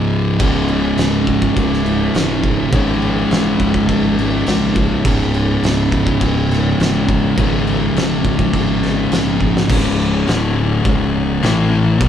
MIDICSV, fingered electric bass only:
0, 0, Header, 1, 2, 480
1, 0, Start_track
1, 0, Key_signature, 4, "minor"
1, 0, Tempo, 580271
1, 332, Time_signature, 4, 2, 24, 8
1, 9996, End_track
2, 0, Start_track
2, 0, Title_t, "Fingered electric bass"
2, 0, Program_c, 0, 33
2, 331, Note_on_c, 0, 25, 91
2, 751, Note_off_c, 0, 25, 0
2, 813, Note_on_c, 0, 25, 96
2, 1233, Note_off_c, 0, 25, 0
2, 1293, Note_on_c, 0, 25, 100
2, 1713, Note_off_c, 0, 25, 0
2, 1773, Note_on_c, 0, 28, 93
2, 2193, Note_off_c, 0, 28, 0
2, 2255, Note_on_c, 0, 32, 88
2, 2675, Note_off_c, 0, 32, 0
2, 2732, Note_on_c, 0, 28, 84
2, 2944, Note_off_c, 0, 28, 0
2, 2975, Note_on_c, 0, 25, 99
2, 3186, Note_off_c, 0, 25, 0
2, 3218, Note_on_c, 0, 32, 99
2, 3637, Note_off_c, 0, 32, 0
2, 3695, Note_on_c, 0, 34, 98
2, 4116, Note_off_c, 0, 34, 0
2, 4176, Note_on_c, 0, 25, 94
2, 4597, Note_off_c, 0, 25, 0
2, 4652, Note_on_c, 0, 25, 92
2, 5074, Note_off_c, 0, 25, 0
2, 5140, Note_on_c, 0, 25, 96
2, 5559, Note_off_c, 0, 25, 0
2, 5618, Note_on_c, 0, 28, 98
2, 6038, Note_off_c, 0, 28, 0
2, 6101, Note_on_c, 0, 32, 98
2, 6520, Note_off_c, 0, 32, 0
2, 6569, Note_on_c, 0, 28, 92
2, 6783, Note_off_c, 0, 28, 0
2, 6824, Note_on_c, 0, 25, 101
2, 7032, Note_off_c, 0, 25, 0
2, 7058, Note_on_c, 0, 32, 95
2, 7478, Note_off_c, 0, 32, 0
2, 7537, Note_on_c, 0, 34, 91
2, 7957, Note_off_c, 0, 34, 0
2, 8018, Note_on_c, 0, 25, 97
2, 8464, Note_off_c, 0, 25, 0
2, 8504, Note_on_c, 0, 26, 96
2, 8947, Note_off_c, 0, 26, 0
2, 8975, Note_on_c, 0, 25, 94
2, 9421, Note_off_c, 0, 25, 0
2, 9457, Note_on_c, 0, 33, 107
2, 9902, Note_off_c, 0, 33, 0
2, 9931, Note_on_c, 0, 35, 89
2, 9996, Note_off_c, 0, 35, 0
2, 9996, End_track
0, 0, End_of_file